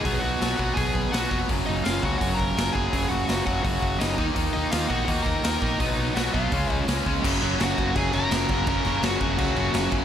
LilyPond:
<<
  \new Staff \with { instrumentName = "Lead electric guitar" } { \time 4/4 \key fis \major \tempo 4 = 167 <gis' gis''>8 <fis' fis''>4 <fis' fis''>8 <gis' gis''>4 <fis' fis''>8. r16 | r8 <dis' dis''>8 <eis' eis''>8 <fis' fis''>8 <fis' fis''>8 <ais' ais''>4 <gis' gis''>8~ | <gis' gis''>8 <fis' fis''>4 <fis' fis''>8 <fis' fis''>4 <dis' dis''>8. r16 | r8 <dis' dis''>8 <eis' eis''>8 <fis' fis''>8 <fis' fis''>8 <ais' ais''>4. |
<dis' dis''>4 <fis' fis''>8 <eis' eis''>4. r4 | r4 <fis' fis''>4 <gis' gis''>8 <ais' ais''>4. | <ais' ais''>4 <fis' fis''>4 <fis' fis''>4. r8 | }
  \new Staff \with { instrumentName = "Overdriven electric guitar" } { \clef bass \time 4/4 \key fis \major r1 | r1 | r1 | r1 |
r1 | <fis, cis fis ais cis'>1 | <fis, cis fis ais cis'>1 | }
  \new Staff \with { instrumentName = "Distorted electric guitar" } { \clef bass \time 4/4 \key fis \major <b, fis b>4 <b, fis b>8 <b, fis b>8 <b, fis b>4 <b, fis b>8 <b, fis b>8 | <fis, cis fis>4 <fis, cis fis>8 <fis, cis fis>8 <fis, cis fis>4 <fis, cis fis>8 <fis, cis fis>8 | <fis, cis fis>4 <fis, cis fis>8 <fis, cis fis>8 <fis, cis fis>4 <fis, cis fis>8 <dis ais dis'>8 | <dis ais dis'>4 <dis ais dis'>8 <dis ais dis'>8 <dis ais dis'>4 <dis ais dis'>8 <dis ais dis'>8 |
<b, fis b>4 <b, fis b>8 <b, fis b>8 <cis gis cis'>4 <cis gis cis'>8 <cis gis cis'>8 | <fis, cis fis>8 <fis, cis fis>8 <fis, cis fis>8 <fis, cis fis>8 <fis, cis fis>8 <fis, cis fis>8 <fis, cis fis>8 <fis, cis fis>8 | <fis, cis fis>8 <fis, cis fis>8 <fis, cis fis>8 <fis, cis fis>8 <fis, cis fis>8 <fis, cis fis>8 <fis, cis fis>8 <fis, cis fis>8 | }
  \new Staff \with { instrumentName = "Overdriven electric guitar" } { \clef bass \time 4/4 \key fis \major <b, fis b>4 <b, fis b>8 <b, fis b>8 <b, fis b>4 <b, fis b>8 <b, fis b>8 | <fis, cis fis>4 <fis, cis fis>8 <fis, cis fis>8 <fis, cis fis>4 <fis, cis fis>8 <fis, cis fis>8 | <fis, cis fis>4 <fis, cis fis>8 <fis, cis fis>8 <fis, cis fis>4 <fis, cis fis>8 <dis ais dis'>8 | <dis ais dis'>4 <dis ais dis'>8 <dis ais dis'>8 <dis ais dis'>4 <dis ais dis'>8 <dis ais dis'>8 |
<b, fis b>4 <b, fis b>8 <b, fis b>8 <cis gis cis'>4 <cis gis cis'>8 <cis gis cis'>8 | <fis, cis fis>8 <fis, cis fis>8 <fis, cis fis>8 <fis, cis fis>8 <fis, cis fis>8 <fis, cis fis>8 <fis, cis fis>8 <fis, cis fis>8 | <fis, cis fis>8 <fis, cis fis>8 <fis, cis fis>8 <fis, cis fis>8 <fis, cis fis>8 <fis, cis fis>8 <fis, cis fis>8 <fis, cis fis>8 | }
  \new Staff \with { instrumentName = "Fretless electric bass" } { \clef bass \time 4/4 \key fis \major b,,8 b,,8 b,,8 b,,8 b,,8 b,,8 b,,8 eis,,8 | fis,,8 fis,,8 fis,,8 cis,8 fis,,8 fis,,8 fis,,8 fis,,8 | fis,,8 fis,,8 fis,,8 fis,,8 fis,,8 fis,,8 fis,,8 dis,8 | dis,8 dis,8 dis,8 ais,,8 dis,8 dis,8 dis,8 ais,,8 |
b,,8 b,,8 b,,8 b,,8 cis,8 cis,8 cis,8 cis,8 | fis,,8 fis,,8 fis,,8 fis,,8 fis,,8 fis,,8 fis,,8 fis,,8 | fis,,8 fis,,8 fis,,8 fis,,8 cis,8 fis,,8 fis,,8 fis,,8 | }
  \new DrumStaff \with { instrumentName = "Drums" } \drummode { \time 4/4 <hho bd>4 <hho sn>8 bd8 <hho bd>8 bd8 <hho sn>8 bd8 | <hho bd>4 <hho sn>8 bd8 <hho bd>8 bd8 <hho sn>8 bd8 | <hho bd>4 <hho sn>8 bd8 <hho bd>8 bd8 <hho sn>8 bd8 | <hho bd>4 <hho sn>8 bd8 <hho bd>8 bd8 <hho sn>8 bd8 |
<hho bd>4 <hho sn>8 bd8 <hho bd>8 bd8 <hho sn>8 bd8 | <cymc bd>8 cymc8 <cymc sn>8 <cymc bd>8 <cymc bd>8 cymc8 <cymc sn>8 <cymc bd>8 | <cymc bd>8 cymc8 <cymc sn>8 <cymc bd>8 <cymc bd>8 cymc8 <cymc sn>8 <cymc bd>8 | }
>>